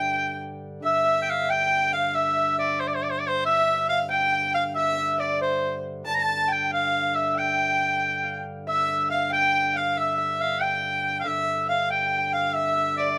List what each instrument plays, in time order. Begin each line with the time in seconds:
Already playing: pipe organ G2 D3, harp A#4 C5 D5 E5 G5, fiddle G5, shawm G5
0.82 pipe organ G2 D3, fiddle E5, harp E5, shawm E5
1.04 harp E5
1.22 shawm G5
1.29 shawm F5
1.48 harp G5, fiddle G5, shawm G5
1.93 fiddle F5, shawm F5
2.15 fiddle E5, shawm E5, harp E5
2.36 harp E5
2.59 harp D5, shawm D5
2.80 shawm C5
2.87 shawm D5
2.94 shawm C5
3.03 shawm D5
3.11 shawm C5
3.20 shawm D5
3.27 harp C5, fiddle C5, shawm C5
3.45 harp E5, fiddle E5, shawm E5
3.67 harp E5
3.88 harp F5, fiddle F5, shawm F5
4.10 shawm G5, harp G5, fiddle G5
4.32 harp G5
4.54 fiddle F5, shawm F5, harp F5
4.75 shawm E5, fiddle E5, harp E5
5.20 shawm D5, fiddle D5, harp D5
5.41 harp C5, shawm C5, fiddle C5
6.04 pipe organ G2 D3, harp A5, fiddle A5
6.09 shawm A5
6.14 harp A5, shawm A#5
6.19 fiddle A5
6.23 shawm A5
6.48 fiddle G5
6.52 shawm G5
6.63 harp G5, fiddle G5
6.71 fiddle F5, harp F5, shawm F5
7.14 fiddle E5, shawm E5, harp E5
7.37 fiddle G5, harp G5, shawm G5
8.23 harp F5
8.67 harp E5, shawm E5, fiddle E5
9.10 harp F5, fiddle F5, shawm F5
9.31 fiddle G5, harp G5, shawm G5
9.75 fiddle F5, harp F5, shawm F5
9.96 harp E5, fiddle E5, shawm E5
10.18 harp E5, fiddle E5
10.40 harp F5, shawm F5
10.60 harp G5, shawm G5, fiddle G5
11.20 shawm F5
11.25 pipe organ G2 D3, fiddle E5, harp E5, shawm E5
11.69 fiddle F5, shawm F5, harp F5
11.90 harp G5, shawm G5, fiddle G5
12.06 harp G5
12.18 harp G5
12.33 fiddle F5, shawm F5, harp F5
12.53 shawm E5, fiddle E5, harp E5
12.77 harp E5
12.97 shawm D5, fiddle D5, harp D5
13.05 harp D5
13.10 harp D5
13.14 fiddle D5